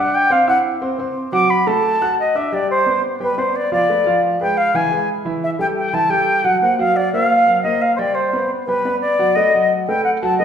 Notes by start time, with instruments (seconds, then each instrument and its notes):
Already playing: grand piano D4 D5 D6, flute F#5
0.14 flute G5
0.30 grand piano C4 C5 C6, flute F5
0.47 grand piano E4 E5 E6, flute F#5
0.81 grand piano C4 C5 C6
0.99 grand piano C4 C5 C6
1.32 grand piano F#3 F#4 F#5, flute D6
1.50 flute B5
1.67 grand piano A3 A4 A5, flute A5
2.01 grand piano F#4 F#5 F#6
2.19 flute D#5
2.35 grand piano D4 D5 D6, flute E5
2.52 grand piano G3 G4 G5, flute D5
2.70 flute C5
2.86 grand piano B3 B4 D5
3.20 grand piano G3 G4 G5, flute B4
3.38 grand piano B3 B4 D5, flute C5
3.56 flute D5
3.72 grand piano F3 F4 F5, flute D5
3.89 grand piano A3 A4 B4
4.06 grand piano F3 F4 F5
4.41 grand piano G#3 G#4 B4, flute G5
4.57 flute F5
4.74 grand piano E3 E4 E5, flute G#5
4.91 grand piano G#3 G#4 B4
5.25 grand piano E3 E4 E5
5.43 flute E5
5.59 grand piano G3 G4 A4, flute G5
5.77 flute G5
5.93 grand piano E3 E4 E5, flute A5
6.10 grand piano G3 G4 A4, flute G5
6.44 grand piano F#3 F#4 F#5, flute F#5
6.61 grand piano A#3 A#4 C5, flute F#5
6.79 grand piano F#3 F#4 F#5, flute F5
6.96 flute D5
7.13 grand piano A#3 A#4 C5, flute F5
7.46 grand piano F#3 F#4 F#5
7.63 grand piano A#3 A#4 C5, flute D#5
7.81 flute F5
7.96 grand piano G3 G4 G5, flute C5 D5
8.14 flute C5
8.33 grand piano B3 B4 D5
8.66 grand piano G3 G4 G5, flute B4
8.85 grand piano B3 B4 D5
9.00 flute D5
9.19 grand piano F#3 F#4 F#5
9.35 grand piano A3 A4 B4, flute D#5
9.54 grand piano F#3 F#4 F#5
9.87 grand piano A3 A4 B4, flute G5
10.04 flute F#5
10.22 grand piano F#3 F#4 F#5, flute A5
10.38 grand piano A3 A4 B4, flute D#5